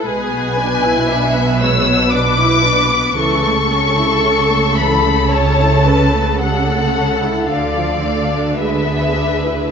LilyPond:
<<
  \new Staff \with { instrumentName = "Violin section" } { \time 3/4 \key a \major \tempo 4 = 56 gis''4. e'''8 d'''4 | cis'''4. b''8 a''4 | fis''4 f''4 e''4 | }
  \new Staff \with { instrumentName = "Violin section" } { \time 3/4 \key a \major gis'8 b'8 e''8 cis''8 b'4 | a'8 a'4. cis''8 b'8 | a'4 d''4 b'4 | }
  \new Staff \with { instrumentName = "Viola section" } { \time 3/4 \key a \major << { b'2. | a'2.~ | a'2 gis'4 | } \\ { gis16 b16 d'16 e'16 d'16 b16 gis16 b16 d'16 e'16 d'16 b16 | e16 a16 cis'16 e'16 cis'16 a16 e16 a16 cis'16 e'16 cis'16 a16 | g16 a16 cis'16 e'16 d16 f16 a16 d'16 gis16 b16 d'16 e'16 | } >> }
  \new Staff \with { instrumentName = "Cello section" } { \clef bass \time 3/4 \key a \major b,2. | cis2.~ | cis4 d2 | }
  \new Staff \with { instrumentName = "Double bass section" } { \clef bass \time 3/4 \key a \major b,,2. | cis,2.~ | cis,4 d,2 | }
>>